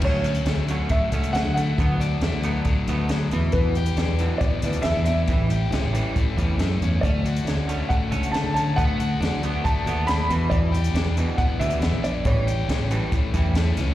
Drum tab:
CC |x---------------|----------------|----------------|----------------|
HH |--xxx-x-x-xxx-x-|x-x-x-x-x-x-x-x-|x-xxx-x-x-xxx-x-|x-x-x-x-x-x-x-x-|
SD |----o-------o---|----o-------o---|----o-------o---|----o-------o---|
BD |o-------o-------|o-------o-------|o-------o-------|o-------o-o-----|

CC |----------------|----------------|----------------|----------------|
HH |x-xxx-x-x-xxx-x-|x-x-x-x-x-x-x-x-|x-xxx-x-x-xxx-x-|x-x-x-x-x-x-x-x-|
SD |----o-------o---|----o-------o---|----o-------o---|----o-------o-o-|
BD |o-------o-------|o-------o-------|o-------o-------|o-------o-o-----|